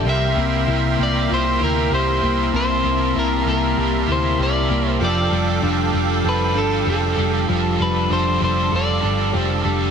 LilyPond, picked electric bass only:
\new Staff \with { instrumentName = "Picked electric bass" } { \clef bass \time 4/4 \key c \major \tempo 4 = 97 c,8 c,8 c,8 c,8 c,8 d,8 c,8 c,8 | c,8 c,8 c,8 c,8 c,8 d,8 c,8 c,8 | f,,8 f,,8 f,,8 f,,8 f,,8 g,,8 f,,8 f,,8 | f,,8 f,,8 f,,8 f,,8 f,,8 g,,8 f,,8 f,,8 | }